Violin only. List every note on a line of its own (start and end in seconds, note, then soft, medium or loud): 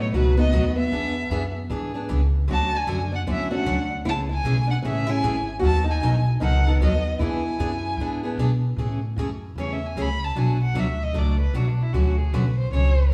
0.01 0.14 C#5 medium
0.15 0.36 B4 medium
0.39 0.75 D#5 medium
0.78 1.52 E5 medium
2.53 2.78 A5 loud
2.76 3.14 G#5 medium
3.15 3.21 F#5 medium
3.31 3.52 E5 medium
3.54 3.89 F#5 medium
4.09 4.19 A5 loud
4.33 4.68 G#5 medium
4.71 4.77 F#5 medium
4.86 5.11 E5 medium
5.10 5.48 G#5 loud
5.66 5.87 A5 loud
5.90 6.25 G#5 medium
6.43 6.79 F#5 loud
6.83 7.19 D#5 medium
7.23 8.36 G#5 medium
9.60 9.75 C#5 medium
9.73 9.88 E5 medium
9.87 10.03 G#5 medium
10.01 10.25 B5 loud
10.24 10.40 A5 medium
10.38 10.61 G#5 medium
10.64 10.81 F#5 medium
10.79 11.04 E5 medium
11.03 11.20 D#5 medium
11.18 11.39 D5 medium
11.40 11.57 B4 medium
11.56 11.69 F#4 medium
11.68 11.84 D4 medium
11.83 11.95 E4 medium
11.93 12.19 F#4 medium
12.18 12.34 G#4 medium
12.33 12.57 B4 medium
12.58 12.71 C5 medium
12.74 13.09 C#5 medium